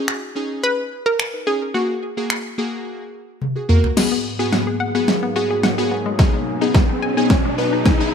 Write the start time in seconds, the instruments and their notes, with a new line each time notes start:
Already playing: synth keys C#4 D#4 G#4, synth pluck G#4
0.08 finger snap
0.35 synth keys C#4 D#4 G#4
0.63 synth pluck B4
1.06 synth pluck A#4
1.20 finger snap
1.33 synth keys D#4 B4
1.47 synth keys C#4 D#4 G#4, synth pluck G#4
1.74 synth keys A#3 F#4 G#4, synth pluck F#4
2.17 synth keys A#3 F#4 G#4
2.30 finger snap
2.58 synth keys A#3 F#4 G#4
3.42 high tom
3.56 synth keys F#4 G#4
3.69 synth keys A#3 F#4 A#4, mid tom
3.84 floor tom
3.97 analog synth pad G#2 F#3 A#3 B3 G#4, synth arpeggio sound G#3, synth keys B3 F#4 G#4, snare, crash, riser
4.12 synth arpeggio sound B3
4.39 synth keys B3 F#4 G#4, synth arpeggio sound G#4
4.52 synth arpeggio sound F#5, snare
4.67 synth arpeggio sound G#4
4.80 synth arpeggio sound F#5
4.95 synth keys B3 F#4 G#4, synth arpeggio sound F#5
5.08 snare
5.23 synth arpeggio sound B3
5.35 synth keys B3 F#4 G#4, synth arpeggio sound F#4
5.51 synth arpeggio sound G#4
5.63 synth arpeggio sound F#5, snare
5.78 synth keys B3 F#4 G#4, synth arpeggio sound G#4
5.91 synth arpeggio sound B3
6.06 synth arpeggio sound G#3
6.19 synth arpeggio sound B2, analog synth pad B2 C#4 D#4, synth keys B3 D#4 G#4, kick, snare
6.34 synth arpeggio sound G#3
6.61 synth keys B3 D#4 G#4, synth arpeggio sound D#4
6.74 synth arpeggio sound G#5, kick, snare
6.89 synth arpeggio sound D#4
7.02 synth arpeggio sound G#5
7.17 synth keys B3 D#4 G#4, synth arpeggio sound G#5
7.30 kick, snare
7.45 synth arpeggio sound G#3
7.58 synth keys B3 D#4 B4, synth arpeggio sound B3
7.73 synth arpeggio sound D#4
7.86 synth arpeggio sound G#5, kick, snare
8.00 synth keys B3 D#4 G#4, synth arpeggio sound D#4